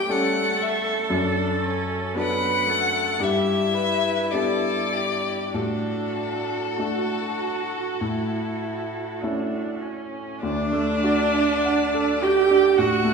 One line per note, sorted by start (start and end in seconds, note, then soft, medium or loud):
0.00 0.09 G3 soft
0.00 0.10 C#4 soft
0.00 0.11 G4 medium
0.00 0.10 A4 soft
0.00 0.12 G5 medium
0.08 1.06 G3 soft
0.08 1.11 A3 medium
0.08 1.06 C#4 soft
0.08 2.17 A4 medium
0.08 1.07 A4 soft
0.08 0.63 F#5 medium
0.62 1.12 E5 medium
1.09 2.13 F#2 soft
1.09 1.62 D4 medium
1.63 2.16 C#4 medium
2.15 3.16 F#3 soft
2.15 2.68 B3 soft
2.15 3.16 D4 soft
2.15 3.16 A4 soft
2.15 2.71 B4 medium
2.19 3.25 F#5 medium
2.67 3.19 A3 soft
2.67 3.22 A4 medium
3.18 4.28 G2 medium
3.18 5.51 E4 soft
3.18 3.76 G4 medium
3.23 4.32 E5 medium
3.74 4.31 B4 medium
4.31 5.50 B3 soft
4.31 5.50 D4 soft
4.31 5.51 G4 soft
4.31 4.94 A4 soft
4.31 5.56 D5 medium
4.93 5.55 G4 soft
5.52 6.75 A2 soft
5.52 6.64 D4 soft
5.52 9.82 F#4 soft
5.52 9.23 A4 medium
6.78 7.97 A3 soft
6.78 7.97 D4 soft
6.78 8.02 F#4 soft
6.78 7.97 F#4 soft
8.00 9.19 A2 soft
8.00 9.23 E4 medium
9.22 10.38 A3 soft
9.22 10.38 C#4 soft
9.22 9.83 D4 soft
9.22 10.38 E4 soft
9.81 10.41 C#4 soft
10.41 12.75 D2 soft
10.41 12.25 D4 medium
10.41 12.24 D4 medium
10.41 12.25 D5 medium
10.72 11.21 A3 soft
11.04 11.52 F#4 soft
11.36 11.83 D5 soft
11.64 12.11 F#5 soft
11.94 12.40 A4 soft
12.23 12.68 F#4 soft
12.23 12.80 G4 medium
12.23 12.79 G4 medium
12.23 12.81 G5 medium
12.51 12.94 D4 soft
12.77 13.14 A2 soft
12.77 13.14 F#4 medium
12.77 13.14 F#5 medium
13.04 13.14 A3 soft